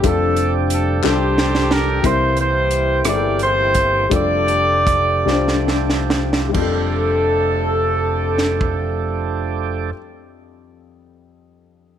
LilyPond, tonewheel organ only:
\new Staff \with { instrumentName = "Tonewheel organ" } { \time 6/8 \key f \major \tempo 4. = 50 <f g d' g'>2. | <e bes c' g'>2. | <f a d' g'>2. | <f a d' g'>2.~ |
<f a d' g'>2. | }